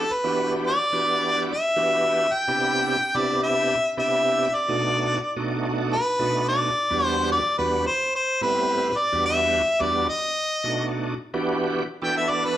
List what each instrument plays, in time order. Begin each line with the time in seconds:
Already playing: harmonica A4
0.13 harmonica B4
0.24 tonewheel organ E3 B3 D4 F#4 G4
0.67 harmonica D5
0.92 tonewheel organ E3 B3 D4 F#4 G4
1.52 harmonica E5
1.76 tonewheel organ E3 B3 D4 F#4 G4
2.33 harmonica G5
2.48 tonewheel organ C3 B3 D4 E4 G4
3.15 tonewheel organ C3 B3 D4 E4 G4, harmonica D5
3.44 harmonica E5
3.97 tonewheel organ C3 B3 D4 E4 G4, harmonica E5
4.55 harmonica D5
4.68 tonewheel organ B2 A3 D4 D#4 F#4
5.36 tonewheel organ B2 A3 D4 D#4 F#4
5.93 harmonica B4
6.19 tonewheel organ B2 A3 D4 D#4 F#4
6.49 harmonica D5
6.90 tonewheel organ E2 G3 B3 D4 F#4
7.06 harmonica C5
7.32 harmonica D5
7.58 tonewheel organ E2 G3 B3 D4 F#4, harmonica B4
7.87 harmonica C5
8.15 harmonica C5
8.41 tonewheel organ A2 G3 B3 C4 E4, harmonica B4
8.98 harmonica D5
9.12 tonewheel organ E2 G3 B3 D4 F#4
9.26 harmonica E5
9.80 tonewheel organ E2 G3 B3 D4 F#4, harmonica D5
10.09 harmonica D#5
10.64 tonewheel organ B2 A3 D4 D#4 F#4
11.34 tonewheel organ E3 B3 D4 F#4 G4
12.02 tonewheel organ E3 B3 D4 F#4 A4, harmonica G5
12.18 harmonica E5
12.30 harmonica D5
12.45 harmonica B4